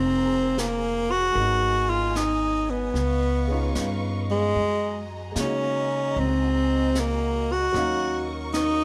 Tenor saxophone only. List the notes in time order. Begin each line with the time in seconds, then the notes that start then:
Already playing: C4
0.60 A#3
1.11 F#4
1.90 F4
2.16 D#4
2.70 B3
4.31 G#3
5.40 C#4
6.20 C4
7.00 A#3
7.52 F#4
8.54 D#4